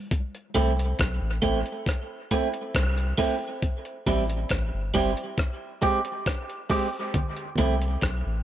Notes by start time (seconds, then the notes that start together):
0.11 kick, closed hi-hat
0.35 closed hi-hat
0.55 C2 A3 C4 E4, kick, closed hi-hat
0.79 closed hi-hat
0.99 B1, kick, cross-stick, closed hi-hat
1.22 A1
1.42 A1 A3 C4 E4, kick, closed hi-hat
1.66 closed hi-hat
1.86 kick, cross-stick, closed hi-hat
2.31 A3 C4 E4, kick, closed hi-hat
2.54 closed hi-hat
2.75 C2, kick, cross-stick, closed hi-hat
2.98 closed hi-hat
3.18 A3 C4 E4, kick, open hi-hat
3.62 kick, closed hi-hat
3.85 closed hi-hat
4.06 A1 G3 C4 E4, kick, open hi-hat
4.29 closed hi-hat
4.49 A1, kick, cross-stick, closed hi-hat
4.74 G1
4.94 G1 G3 C4 E4, kick, open hi-hat
5.17 closed hi-hat
5.38 kick, cross-stick, closed hi-hat
5.82 G#3 C4 G4, kick, closed hi-hat
6.05 closed hi-hat
6.26 kick, cross-stick, closed hi-hat
6.50 closed hi-hat
6.70 G#3 C4 G4, kick, open hi-hat
7.14 kick, closed hi-hat, low conga
7.36 closed hi-hat
7.56 C2 A3 C4 E4, kick, closed hi-hat, low conga
7.82 closed hi-hat
8.01 B1, kick, cross-stick, closed hi-hat
8.26 A1